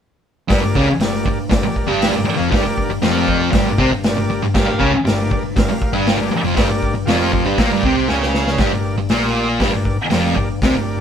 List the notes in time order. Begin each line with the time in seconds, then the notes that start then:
0.49 G1 G2 G3 G4 A#4, kick, snare, open hi-hat
0.53 D5
0.62 G1 G2
0.75 C#2 C#3 C#4, kick
0.86 muted picked electric bass stroke, muted distorted electric guitar stroke
0.98 G1 G2 G4 A#4, snare, open hi-hat
1.02 D5
1.26 G1 G2, kick
1.50 G1 G2 G4 A#4, kick, snare, open hi-hat
1.54 D5
1.63 muted distorted electric guitar stroke, muted picked electric bass stroke
1.76 kick
1.87 G1 G2 G3
2.02 G4 A#4 D5, snare, open hi-hat
2.12 G1 G2
2.24 muted distorted electric guitar stroke, muted picked electric bass stroke
2.36 F1 F2 F3
2.50 G2 G3, kick, snare, open hi-hat
2.55 G4 A#4 D5
2.63 G1 G2
2.78 kick
2.89 G1 G2
3.01 F1 F2 F3 G4, snare, open hi-hat
3.06 A#4 D5
3.28 kick
3.51 G1 G2 G3, kick, snare, open hi-hat
3.56 G4 A#4 D5
3.64 G1 G2
3.78 C2 C3 C4, kick
3.91 G1 G2
4.04 G4 A#4 D5, snare, open hi-hat
4.16 G1 G2
4.28 G1 G2
4.41 G1 G2
4.54 G1 G2 G3 G4 A#4 F5, kick, snare, crash
4.67 G1 G2
4.79 C#2 C#3 C#4, kick
4.93 muted picked electric bass stroke, muted distorted electric guitar stroke
5.04 G1 G2 G4 A#4 D5, snare, open hi-hat
5.31 G1 G2, kick
5.56 G1 G2 G4 A#4 F5, kick, snare, open hi-hat
5.68 muted distorted electric guitar stroke
5.82 kick
5.93 G1 G2 G3
6.07 G4 A#4 D5, snare, open hi-hat
6.17 G1 G2
6.31 muted distorted electric guitar stroke, muted picked electric bass stroke
6.43 F1 F2 F3
6.55 G1 G2 G3 G4 A#4 D5, kick, snare, open hi-hat
6.68 G1 G2
6.82 kick
6.93 G1 G2
7.05 F1 F2 F3 G4 A#4 F5, snare, open hi-hat
7.32 F1 F2 F3 C6, kick
7.44 G1 G2 G3
7.58 A#1 A#2 A#3 G4 A#4 D5 A#5, kick, snare, open hi-hat
7.70 G1 G2 G3
7.81 C2 C3 G5, kick
7.85 C4
8.07 C#2 C#3 C#4 G4 A#4 G5, snare
8.23 snare
8.34 F5, snare
8.47 snare
8.57 G1 G2 G3 G4 A#4 D5, kick, snare, open hi-hat
8.72 G1 G2
8.97 G1 G2
9.09 A#1 A#2 A#3 G4 A#4 D5, snare, open hi-hat
9.59 G1 G2 G3 G4 A#4 D5, kick, snare, open hi-hat
9.72 G1 G2
9.85 kick
10.10 F1 F2 F3 G4 A#4 D5, snare, open hi-hat
10.36 G1 G2, kick
10.62 C2 C3 C4 G4 A#4 D5, kick, snare, open hi-hat
10.74 G1 G2
10.97 G1